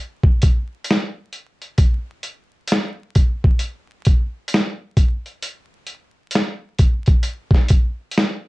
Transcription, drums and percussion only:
0.23 kick medium
0.42 kick medium
0.42 closed hi-hat medium
0.84 closed hi-hat medium
0.91 snare loud
1.33 closed hi-hat medium
1.62 closed hi-hat soft
1.78 kick loud
1.78 closed hi-hat medium
2.23 closed hi-hat medium
2.67 closed hi-hat loud
2.72 snare loud
3.15 kick medium
3.15 closed hi-hat medium
3.44 kick medium
3.59 closed hi-hat medium
4.05 kick medium
4.05 closed hi-hat medium
4.48 closed hi-hat medium
4.54 snare loud
4.97 kick medium
4.97 closed hi-hat medium
5.26 closed hi-hat soft
5.43 closed hi-hat loud
5.87 closed hi-hat medium
6.31 closed hi-hat medium
6.35 snare loud
6.79 kick medium
6.79 closed hi-hat medium
7.06 kick medium
7.06 closed hi-hat soft
7.23 closed hi-hat medium
7.51 kick medium
7.51 snare soft
7.68 kick loud
7.68 closed hi-hat medium
8.11 closed hi-hat medium
8.18 snare loud

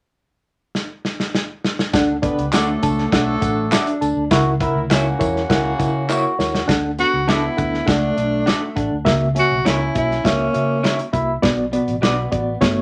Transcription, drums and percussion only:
0.75 snare medium
1.05 snare medium
1.20 snare medium
1.35 snare medium
1.64 snare medium
1.79 snare medium
1.93 kick loud
1.93 snare medium
1.93 closed hi-hat medium
1.93 tambourine medium
2.23 kick medium
2.23 closed hi-hat medium
2.39 closed hi-hat soft
2.53 snare loud
2.53 clap medium
2.53 closed hi-hat medium
2.53 tambourine medium
2.83 kick medium
2.83 closed hi-hat medium
2.83 tambourine medium
2.98 snare soft
3.12 kick medium
3.12 snare loud
3.12 closed hi-hat medium
3.42 kick medium
3.42 closed hi-hat medium
3.42 tambourine soft
3.72 snare loud
3.72 clap loud
3.72 closed hi-hat medium
3.72 tambourine loud
3.87 closed hi-hat medium
4.02 closed hi-hat medium
4.02 tambourine soft
4.31 kick loud
4.31 snare loud
4.31 closed hi-hat medium
4.31 tambourine soft
4.60 kick medium
4.60 closed hi-hat medium
4.91 snare loud
4.91 clap medium
4.91 closed hi-hat medium
4.91 tambourine medium
5.21 kick medium
5.21 closed hi-hat medium
5.21 tambourine medium
5.36 snare soft
5.50 kick medium
5.50 snare loud
5.50 closed hi-hat medium
5.50 tambourine soft
5.80 kick medium
5.80 closed hi-hat medium
5.80 tambourine soft
6.10 clap medium
6.10 tambourine medium
6.40 snare medium
6.40 tambourine soft
6.55 snare medium
6.69 kick medium
6.69 snare loud
6.69 closed hi-hat medium
6.99 closed hi-hat medium
7.29 snare loud
7.29 closed hi-hat medium
7.58 kick medium
7.58 closed hi-hat medium
7.74 snare soft
7.88 kick medium
7.88 snare medium
7.88 closed hi-hat medium
8.18 closed hi-hat medium
8.47 snare loud
8.47 closed hi-hat medium
8.77 kick medium
8.77 closed hi-hat medium
9.06 kick medium
9.06 snare medium
9.06 closed hi-hat medium
9.36 closed hi-hat medium
9.66 snare loud
9.66 closed hi-hat medium
9.95 kick medium
9.95 closed hi-hat medium
10.11 snare soft
10.25 kick medium
10.25 snare loud
10.25 closed hi-hat medium
10.54 closed hi-hat medium
10.84 snare loud
10.84 closed hi-hat medium
10.99 closed hi-hat medium
11.13 kick medium
11.13 closed hi-hat medium
11.43 kick medium
11.43 snare loud
11.43 closed hi-hat medium
11.73 closed hi-hat medium
11.88 closed hi-hat soft
12.03 snare loud
12.03 closed hi-hat medium
12.32 kick medium
12.32 closed hi-hat medium
12.62 kick medium
12.62 snare loud
12.62 closed hi-hat medium

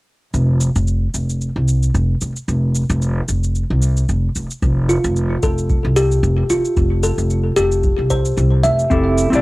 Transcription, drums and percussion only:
0.34 shaker soft
0.61 shaker medium
0.76 shaker soft
0.87 shaker soft
1.14 shaker medium
1.30 shaker soft
1.41 shaker soft
1.68 shaker medium
1.83 shaker soft
1.95 shaker soft
2.21 shaker medium
2.36 shaker soft
2.49 shaker soft
2.75 shaker medium
2.90 shaker soft
3.02 shaker soft
3.28 shaker medium
3.44 shaker soft
3.55 shaker soft
3.82 shaker medium
3.97 shaker soft
4.09 shaker soft
4.36 shaker medium
4.51 shaker soft
4.62 kick loud
4.62 shaker soft
4.90 shaker medium
5.04 shaker soft
5.16 shaker soft
5.43 kick loud
5.43 shaker medium
5.58 shaker soft
5.70 kick loud
5.70 shaker soft
5.97 shaker medium
6.12 shaker soft
6.24 shaker soft
6.50 shaker medium
6.65 shaker soft
6.77 kick loud
6.77 shaker soft
7.03 shaker medium
7.18 shaker soft
7.30 shaker soft
7.57 shaker medium
7.72 shaker soft
7.84 kick loud
7.84 shaker soft
8.11 kick medium
8.11 shaker medium
8.25 shaker soft
8.38 shaker soft
8.64 shaker medium
8.79 shaker soft
8.91 kick loud
8.91 shaker soft
9.18 shaker medium
9.33 shaker soft

